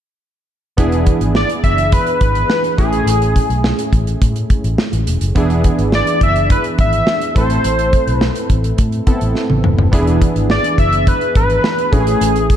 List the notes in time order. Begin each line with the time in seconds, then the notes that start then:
0.77 E1 E3 B3 D4 E4 G#4, kick, closed hi-hat
0.92 closed hi-hat
1.06 kick, closed hi-hat
1.21 G#1, closed hi-hat
1.35 D5, snare
1.50 closed hi-hat
1.64 F#1 E5, kick, closed hi-hat
1.78 closed hi-hat
1.92 B4, kick, closed hi-hat
2.07 closed hi-hat
2.21 G#1 B4, kick, closed hi-hat
2.35 closed hi-hat
2.50 snare
2.64 closed hi-hat
2.77 A1 A2 A3 C#4 E4 G#4, kick, closed hi-hat
2.93 closed hi-hat
3.06 A1, closed hi-hat
3.22 closed hi-hat
3.36 kick, closed hi-hat
3.50 B1, closed hi-hat
3.64 snare
3.79 closed hi-hat
3.93 A1, kick, closed hi-hat
4.07 closed hi-hat
4.22 A2, kick, closed hi-hat
4.36 closed hi-hat
4.50 kick, closed hi-hat
4.64 A1, closed hi-hat
4.78 snare
4.93 A1, closed hi-hat
5.07 E1, closed hi-hat
5.21 F#1, closed hi-hat
5.35 E1 E3 B3 D4 E4 G#4, kick, closed hi-hat
5.50 closed hi-hat
5.64 kick, closed hi-hat
5.79 G#1, closed hi-hat
5.92 D5, snare
6.07 closed hi-hat
6.21 F#1 E5, kick, closed hi-hat
6.36 closed hi-hat
6.50 B4, kick, closed hi-hat
6.64 closed hi-hat
6.78 G#1 E5, kick, closed hi-hat
6.93 closed hi-hat
7.07 snare
7.21 closed hi-hat
7.35 A1 A2 A3 C4 E4 A4 C5, kick, closed hi-hat
7.50 closed hi-hat
7.64 A1, closed hi-hat
7.79 closed hi-hat
7.93 kick, closed hi-hat
8.07 B1 B4, closed hi-hat
8.21 snare
8.35 closed hi-hat
8.50 A1, kick, closed hi-hat
8.64 closed hi-hat
8.78 A2, kick, closed hi-hat
8.92 closed hi-hat
9.07 B3 C4 E4 A4, kick, closed hi-hat
9.21 A1, closed hi-hat
9.35 snare
9.50 A1, high tom
9.64 E1, mid tom
9.78 F#1, floor tom
9.92 E1 E3 B3 D4 E4 G#4, kick, closed hi-hat
10.07 closed hi-hat
10.22 kick, closed hi-hat
10.36 G#1, closed hi-hat
10.50 D5, snare
10.64 closed hi-hat
10.78 F#1 E5, kick, closed hi-hat
10.93 closed hi-hat
11.07 B4, kick, closed hi-hat
11.21 closed hi-hat
11.35 G#1 B4, kick, closed hi-hat
11.50 closed hi-hat
11.64 snare
11.78 closed hi-hat
11.91 A1 A2 A3 C#4 E4 F#4 G#4, kick, closed hi-hat
12.00 G#4
12.07 closed hi-hat
12.21 A1, closed hi-hat
12.36 closed hi-hat
12.50 kick, closed hi-hat